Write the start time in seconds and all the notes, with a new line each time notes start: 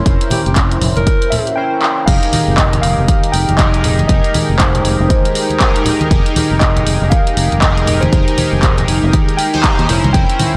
Already playing: A#3 C#4 E4
0.05 F1 C#4 E4 A#4 C5, kick, closed hi-hat
0.21 closed hi-hat
0.30 G4, open hi-hat, high conga, low conga
0.46 F1 G4, closed hi-hat
0.56 kick, clap, closed hi-hat
0.71 closed hi-hat
0.81 F1, open hi-hat, low conga
0.96 F1 A#4, closed hi-hat, high conga
1.07 kick, closed hi-hat
1.22 closed hi-hat
1.30 E5, open hi-hat, low conga
1.47 closed hi-hat
1.56 C#4 E4 A#4 C5 G5
1.82 clap
2.06 F1 G#3 D#4 G4 G#4 A#4 F5 G5, kick, closed hi-hat, crash
2.23 closed hi-hat
2.33 open hi-hat, high conga, low conga
2.48 F1
2.56 D#5, kick, clap, closed hi-hat
2.73 closed hi-hat, high conga, low conga
2.82 F1 F5, open hi-hat
2.98 F1
3.08 kick, closed hi-hat, high conga
3.24 closed hi-hat
3.32 F1 G5, open hi-hat
3.49 F1, closed hi-hat, high conga
3.57 D#4 G4 G#4 A#4 D#5, kick, clap, closed hi-hat
3.74 closed hi-hat
3.84 open hi-hat, low conga
3.99 closed hi-hat, high conga
4.08 F1 D#4 G4 G#4 A#4 D#5, kick, closed hi-hat
4.24 closed hi-hat
4.34 open hi-hat, high conga, low conga
4.50 F1
4.58 C5, kick, clap, closed hi-hat
4.75 closed hi-hat, high conga, low conga
4.85 F1, open hi-hat
5.00 F1
5.08 C5, kick, closed hi-hat, high conga
5.25 closed hi-hat
5.35 open hi-hat
5.50 closed hi-hat, high conga
5.60 D#4 G4 G#4 A#4, kick, clap, closed hi-hat
5.76 closed hi-hat
5.85 open hi-hat, low conga
6.01 closed hi-hat, high conga
6.10 F1 D#4 G4 G#4 A#4, kick, closed hi-hat
6.26 closed hi-hat
6.36 open hi-hat, high conga, low conga
6.51 F1
6.60 D#5, kick, clap, closed hi-hat
6.76 closed hi-hat, high conga, low conga
6.87 F1, open hi-hat
7.02 F1
7.10 F5, kick, closed hi-hat, high conga
7.27 closed hi-hat
7.37 F1, open hi-hat
7.52 F1, closed hi-hat, high conga
7.60 D#4 G4 G#4 A#4 D#5, kick, clap, closed hi-hat
7.77 closed hi-hat
7.87 open hi-hat, low conga
8.01 C5, closed hi-hat, high conga
8.12 F1 D#4 G4 G#4 A#4, kick, closed hi-hat
8.28 closed hi-hat
8.37 open hi-hat, high conga, low conga
8.53 F1
8.63 kick, clap, closed hi-hat
8.77 closed hi-hat, high conga, low conga
8.88 F1, open hi-hat
9.03 F1
9.13 kick, closed hi-hat, high conga
9.29 closed hi-hat
9.37 G5, open hi-hat
9.53 D#4 G4 G#4 C5, closed hi-hat, high conga
9.63 A#5, kick, clap, closed hi-hat
9.79 D#2, closed hi-hat
9.89 F1 A#3 C#4 E4 A#4 C5, open hi-hat, low conga
10.04 C2, closed hi-hat, high conga
10.13 F1 C#4 E4 A#4 C5 G5, kick, closed hi-hat
10.29 closed hi-hat
10.39 open hi-hat, high conga, low conga